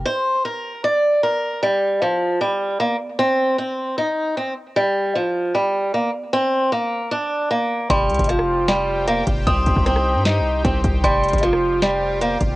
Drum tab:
HH |--------------------------------|--------------------------------|--------------------------------|--------------------------------|
SD |--------------------------------|--------------------------------|--------------------------------|--------------------------------|
BD |--------------------------------|--------------------------------|--------------------------------|--------------------------------|

HH |--------------------------------|x---xxxxx-------x-------x---x---|x---x---x-------x-------x---x---|x---xxxxx-------x-------x---x---|
SD |--------------------------------|--------r-r-----o---------------|--------r-r-----o---------------|--------r-r-----o---------------|
BD |--------------------------------|o-----o---------------------o---|o---o-o-----------------o---o---|o-----o---------------------o---|